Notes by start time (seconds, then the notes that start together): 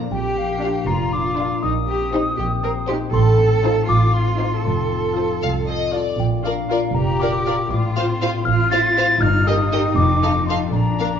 Already playing: F3 A#3 D4 A#4
0.11 A#1 A#2 G4 G5
0.37 A#3 F5
0.62 D4 F4 F5
0.87 F1 F4 A#4 A#5
1.13 D4 D6
1.37 D4 F4 A#4 F5
1.63 A#1 A#2 D#4 D#6
1.87 C4 G4
2.12 D#4 G4 C5
2.37 A#1 G4
2.63 A#4 C5
2.88 D#4 G4 C5
3.14 A1 A2 A4 C6
3.38 C4 A5
3.64 D#4 F4 C5
3.88 A1 F4 D6
4.14 C5 C6
4.39 D#4 F4 C5
4.64 F1 F2 A4 C6
4.92 C4
5.16 F4 A4 C5
5.42 C2 A4 F5
5.67 C5 D#5
5.93 F4 A4 D5
6.19 A#1 A#2 G5
6.43 D4 F4 A#4 D5 F5
6.69 F4 A#4 D5
6.95 F1 G4 A#4 A#5
7.20 F4 A#4 D5 D6
7.45 F4 A#4 D5
7.71 A1 A2 F4 D6
7.96 C4 F4 C5 F5 C6
8.21 F4 C5 F5
8.45 A1 F4 C5 F6
8.71 F4 C5 F5 A6
8.96 F4 C5 F5
9.21 G1 G2 D#4 F6
9.47 A#3 G4 A#4 D#5 D#6
9.72 D#4 G4 A#4 D#5
9.96 F1 F2 D6
10.23 C4 D#4 A4 F5
10.47 D#4 A4 F5 C6
10.73 A#1 A#2 D4 A#5
10.99 A#3 D4 A#4 F5